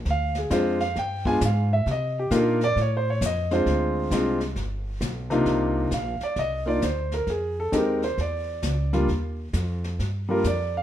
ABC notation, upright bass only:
X:1
M:4/4
L:1/8
Q:"Swing" 1/4=133
K:Cm
V:1 name="Upright bass" clef=bass
D,,2 F,,2 G,,2 A,,2 | C,2 B,,2 =A,,2 F,,2 | D,,2 C,,2 G,,,2 =B,,,2 | C,,2 B,,, z C,,2 D,,2 |
F,,2 E,,2 =E,,2 ^C,,2 | E,,2 F,,2 G,,2 F,,2 |]